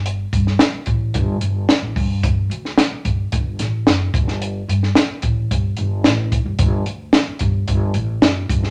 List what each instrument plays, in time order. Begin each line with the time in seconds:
Already playing: upright bass G1
0.06 closed hi-hat
0.33 upright bass G2, kick, closed hi-hat
0.47 snare
0.59 snare, closed hi-hat
0.73 muted upright bass stroke
0.86 upright bass A1, kick, closed hi-hat
1.14 upright bass G1, kick, closed hi-hat
1.41 upright bass G1, closed hi-hat
1.69 muted upright bass stroke, snare, closed hi-hat
1.82 upright bass A1
1.96 upright bass G2, kick, open hi-hat
2.23 upright bass G1, kick, closed hi-hat
2.50 upright bass D2, closed hi-hat
2.65 snare
2.78 snare, closed hi-hat
2.91 muted upright bass stroke
3.05 upright bass G1, kick, closed hi-hat
3.32 upright bass G1, kick, closed hi-hat
3.59 upright bass A1, snare, closed hi-hat
3.87 upright bass F#1, snare, closed hi-hat
4.14 upright bass G1, kick, closed hi-hat
4.28 snare
4.42 closed hi-hat
4.68 upright bass G2, closed hi-hat
4.83 snare
4.95 snare, closed hi-hat
5.09 muted upright bass stroke
5.22 upright bass A1, kick, closed hi-hat
5.51 upright bass G1, kick, closed hi-hat
5.77 upright bass G1, closed hi-hat
6.04 upright bass A1, snare, closed hi-hat
6.32 kick, closed hi-hat
6.46 upright bass G1
6.59 upright bass G1, kick, closed hi-hat
6.86 upright bass D2, closed hi-hat
7.13 snare, closed hi-hat
7.28 muted upright bass stroke
7.39 upright bass G1, kick, closed hi-hat
7.68 upright bass G1, kick, closed hi-hat
7.94 upright bass A1, closed hi-hat
8.22 upright bass F#1, snare, closed hi-hat
8.49 upright bass G1, kick, closed hi-hat
8.63 snare